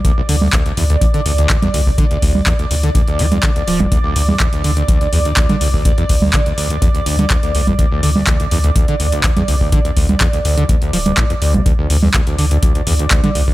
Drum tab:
HH |x-o-xxoxxxoxxxo-|xxo-xxoxxxoxxxox|x-o-xxoxxxoxxxo-|xxo-xxoxxxoxxxox|
CP |----x-------x---|----x-------x---|----x-------x---|----x-------x---|
CG |---O---------O--|---O-------O---O|---O---------O--|---O-------O---O|
BD |o---o---o---o--o|o-o-o---o---o--o|o---o---o---o--o|o-o-o---o---o--o|

HH |x-o-xxoxxxoxxxo-|xxoxxxoxxxoxxxox|x-o-xxoxxxoxxxo-|
CP |----x-------x---|----x-------x---|----x-------x---|
CG |---O---------O--|---O-------O---O|---O---------O--|
BD |o---o---o---o--o|o-o-o---o---o--o|o---o---o---o--o|